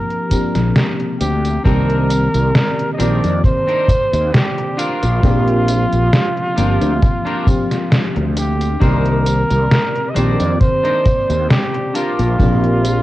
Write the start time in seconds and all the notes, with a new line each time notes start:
Already playing: F3 A#3 C4 D4 G4 A#4
0.10 closed hi-hat
0.29 F3 A#3 C4 D4 G4, kick, closed hi-hat, tambourine
0.55 A#1, snare, closed hi-hat, tambourine
0.76 snare, closed hi-hat, tambourine
1.00 closed hi-hat
1.20 D2 G4, closed hi-hat, tambourine
1.45 closed hi-hat, tambourine
1.63 C2 D#3 A#3 C4 D4 D#4 G4 A#4 D5, kick, closed hi-hat, tambourine
1.90 closed hi-hat
2.10 closed hi-hat, tambourine
2.34 C2, closed hi-hat, tambourine
2.55 snare, closed hi-hat, tambourine
2.77 muted clean electric guitar stroke, closed hi-hat
2.93 D#5
2.98 A#1 D#3 A#3 C4 D4 D#4 G4 A#4 D5, closed hi-hat, tambourine
3.24 F2, closed hi-hat, tambourine
3.44 C5, kick, closed hi-hat, tambourine
3.67 C4 D4 D#4 A#4, closed hi-hat
3.88 kick, closed hi-hat, tambourine
4.12 D#2, muted clean electric guitar stroke, closed hi-hat, tambourine
4.32 G4, muted clean electric guitar stroke, snare, closed hi-hat, tambourine
4.56 muted clean electric guitar stroke, closed hi-hat
4.77 D4 F4 G4 A#4, closed hi-hat, tambourine
5.03 A#1, closed hi-hat, tambourine
5.22 A#1 F3 A#3 C4 D4 G4, kick, closed hi-hat, tambourine
5.48 closed hi-hat
5.68 closed hi-hat, tambourine
5.92 A#1, closed hi-hat, tambourine
6.13 snare, closed hi-hat, tambourine
6.35 muted clean electric guitar stroke, closed hi-hat
6.56 G1 F3 A#3 C4 D4 F4 G4 A#4, closed hi-hat, tambourine
6.82 D2, closed hi-hat, tambourine
7.03 kick, closed hi-hat, tambourine
7.25 D4 F4 G4 A#4, closed hi-hat
7.46 F3 A#3 C4 D4 G4, kick, closed hi-hat, tambourine
7.70 muted clean electric guitar stroke, snare, closed hi-hat, tambourine
7.90 muted clean electric guitar stroke, snare, closed hi-hat, tambourine
8.15 D2, muted clean electric guitar stroke, closed hi-hat
8.35 G4, muted clean electric guitar stroke, closed hi-hat, tambourine
8.61 closed hi-hat, tambourine
8.80 C2 D#3 A#3 C4 D4 D#4 G4 A#4 C5 D5, kick, closed hi-hat, tambourine
9.06 closed hi-hat
9.26 closed hi-hat, tambourine
9.50 C2, closed hi-hat, tambourine
9.70 muted clean electric guitar stroke, snare, closed hi-hat, tambourine
9.94 muted clean electric guitar stroke, closed hi-hat
10.10 D#5
10.14 A#1 D#3 A#3 C4 D4 D#4 G4 A#4 C5 D5, closed hi-hat, tambourine
10.40 F2, closed hi-hat, tambourine
10.61 C5, kick, closed hi-hat, tambourine
10.83 D4 D#4 A#4 C5, closed hi-hat
11.06 kick, closed hi-hat, tambourine
11.28 D#2, muted clean electric guitar stroke, closed hi-hat, tambourine
11.49 G4, muted clean electric guitar stroke, snare, closed hi-hat, tambourine
11.73 muted clean electric guitar stroke, closed hi-hat
11.94 D4 F4 G4 A#4, closed hi-hat, tambourine
12.19 A#1, closed hi-hat, tambourine
12.39 A#1 F3 A#3 C4 D4 G4, kick, closed hi-hat, tambourine
12.64 closed hi-hat
12.85 closed hi-hat, tambourine